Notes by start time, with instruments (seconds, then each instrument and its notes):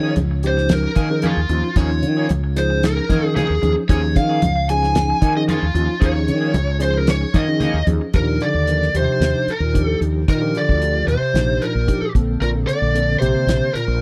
Already playing: fretless electric bass D#3, tine electric piano F3 C#4 D#4 G#4, lead electric guitar C#5
0.03 clean electric guitar A#3 C#4 G#4
0.16 fretless electric bass C#2, muted clean electric guitar stroke, closed hi-hat, high conga
0.31 muted clean electric guitar stroke
0.43 tine electric piano F3 C#4 D#4 G4, closed hi-hat
0.47 lead electric guitar C5
0.57 muted clean electric guitar stroke, snare
0.69 lead electric guitar A#4, snare, closed hi-hat, muted conga, high conga
0.83 muted clean electric guitar stroke
0.95 fretless electric bass D#3, clean electric guitar F3 A#3 C#4 G#4, kick, closed hi-hat
1.10 tine electric piano F3 C#4 D#4 G#4, muted clean electric guitar stroke
1.22 clean electric guitar F3 A#3 C#4 G#4, lead electric guitar F4, closed hi-hat, high conga
1.37 fretless electric bass D#2
1.49 fretless electric bass D#2, tine electric piano F3 C#4 D#4 F4, muted clean electric guitar stroke, closed hi-hat
1.64 muted clean electric guitar stroke
1.76 fretless electric bass D#2, clean electric guitar F3 A#3 C#4 G#4, tine electric piano F3 C#4 D#4 F4, lead electric guitar C#5, kick, closed hi-hat
1.91 muted clean electric guitar stroke
2.03 fretless electric bass D#3, closed hi-hat
2.17 clean electric guitar A#3 C#4 G#4
2.29 fretless electric bass C#2, closed hi-hat, high conga
2.44 muted clean electric guitar stroke
2.56 tine electric piano F3 C#4 D#4 G#4, lead electric guitar C5, closed hi-hat
2.70 muted clean electric guitar stroke
2.83 lead electric guitar A#4, snare, closed hi-hat
2.97 muted clean electric guitar stroke
3.09 fretless electric bass D#3, clean electric guitar F3 A#3 C#4 G#4, kick, closed hi-hat, muted conga, high conga
3.23 tine electric piano F3 C#4 D#4 A#4, muted clean electric guitar stroke
3.35 clean electric guitar F3 A#3 C#4 G#4, lead electric guitar G#4, closed hi-hat, low conga
3.50 fretless electric bass D#2
3.62 fretless electric bass D#2, tine electric piano F3 C#4 D#4 G#4, muted clean electric guitar stroke, closed hi-hat, muted conga, high conga
3.76 muted clean electric guitar stroke
3.89 fretless electric bass D#2, clean electric guitar F3 A#3 C#4 G#4, tine electric piano F3 C#4 D#4 G#4, lead electric guitar C#5, kick, closed hi-hat
4.03 muted clean electric guitar stroke
4.16 fretless electric bass D#3, lead electric guitar F5, kick, closed hi-hat
4.29 clean electric guitar A#3 C#4 G#4
4.42 fretless electric bass C#2, muted clean electric guitar stroke, closed hi-hat, high conga
4.56 muted clean electric guitar stroke
4.69 tine electric piano F3 C#4 D#4 G#4, lead electric guitar G#5, closed hi-hat
4.83 muted clean electric guitar stroke, snare
4.95 snare, closed hi-hat, muted conga, high conga
5.10 muted clean electric guitar stroke
5.21 fretless electric bass D#3, clean electric guitar F3 A#3 C#4 G#4, kick, closed hi-hat, muted conga
5.36 tine electric piano F3 C#4 D#4 G#4, lead electric guitar D#5, muted clean electric guitar stroke
5.48 clean electric guitar F3 A#3 C#4 G#4, lead electric guitar F4, closed hi-hat, high conga
5.62 fretless electric bass D#2
5.74 fretless electric bass D#2, tine electric piano F3 C#4 D#4 F4, muted clean electric guitar stroke, closed hi-hat, muted conga
5.88 muted clean electric guitar stroke
6.00 fretless electric bass D#2, clean electric guitar F3 A#3 C#4 G#4, tine electric piano F3 C#4 D#4 G#4, lead electric guitar C#5, kick, closed hi-hat, muted conga
6.15 muted clean electric guitar stroke
6.28 fretless electric bass D#3, closed hi-hat
6.41 clean electric guitar A#3 C#4 G#4
6.54 fretless electric bass C#2, closed hi-hat, high conga
6.67 muted clean electric guitar stroke
6.79 tine electric piano F3 C#4 D#4 G#4, lead electric guitar C5, closed hi-hat
6.94 lead electric guitar A#4, muted clean electric guitar stroke
7.07 lead electric guitar C#5, snare, closed hi-hat, muted conga
7.21 muted clean electric guitar stroke
7.34 fretless electric bass D#3, clean electric guitar F3 A#3 C#4 G#4, lead electric guitar D#5, kick, closed hi-hat, muted conga, high conga
7.47 tine electric piano F3 C#4 D#4 G#4, muted clean electric guitar stroke
7.60 clean electric guitar F3 A#3 C#4 G#4, closed hi-hat, low conga
7.74 fretless electric bass D#2
7.87 fretless electric bass D#2, tine electric piano F3 C#4 D#4 G#4, muted clean electric guitar stroke, closed hi-hat, muted conga, high conga
8.01 muted clean electric guitar stroke
8.14 fretless electric bass D#2, bass clarinet A#2, tine electric piano F3 D4 D#4 G4, lead electric guitar A#4, kick, closed hi-hat
8.41 bass clarinet D3, lead electric guitar D5, closed hi-hat
8.54 fretless electric bass D#2
8.67 tine electric piano F3 D4 D#4 A#4, closed hi-hat
8.82 snare
8.94 fretless electric bass D#2, tine electric piano F3 D4 D#4 G4, lead electric guitar C5, closed hi-hat
9.00 bass clarinet C3
9.20 fretless electric bass D#2, snare, closed hi-hat
9.47 lead electric guitar A#4, muted fretless electric bass stroke, closed hi-hat
9.53 bass clarinet A#2
9.60 fretless electric bass D#2
9.74 tine electric piano F3 D4 D#4 G4, kick, closed hi-hat
9.86 bass clarinet A2, lead electric guitar A4
10.01 fretless electric bass D#2, closed hi-hat
10.28 fretless electric bass D#3, lead electric guitar A#4, kick, closed hi-hat
10.33 bass clarinet A#2
10.41 tine electric piano F3 D4 F4 G4
10.55 bass clarinet D3, lead electric guitar D5, closed hi-hat
10.69 fretless electric bass D2, kick
10.82 closed hi-hat
11.07 fretless electric bass D#2, bass clarinet C3, lead electric guitar C5, closed hi-hat
11.21 muted fretless electric bass stroke
11.33 fretless electric bass A#1, tine electric piano F3 D4 D#4 G4, snare, closed hi-hat
11.62 bass clarinet A#2, lead electric guitar A#4, closed hi-hat
11.75 fretless electric bass A#1
11.87 tine electric piano F3 D4 D#4 G4, kick, closed hi-hat
12.02 muted fretless electric bass stroke
12.15 fretless electric bass A#1, tine electric piano D3 A#3 C4 A4, kick, closed hi-hat
12.41 fretless electric bass A#1, bass clarinet A#2, lead electric guitar A#4, closed hi-hat
12.67 bass clarinet D3, lead electric guitar D5, closed hi-hat
12.82 fretless electric bass A#1
12.95 tine electric piano D3 A#3 C4 A4, closed hi-hat
13.19 fretless electric bass A#1, bass clarinet C3, tine electric piano D3 A#3 C4 G4, lead electric guitar C5, closed hi-hat
13.47 fretless electric bass A#1, snare, closed hi-hat
13.73 bass clarinet A#2, lead electric guitar A#4, muted fretless electric bass stroke, closed hi-hat
13.88 fretless electric bass A#1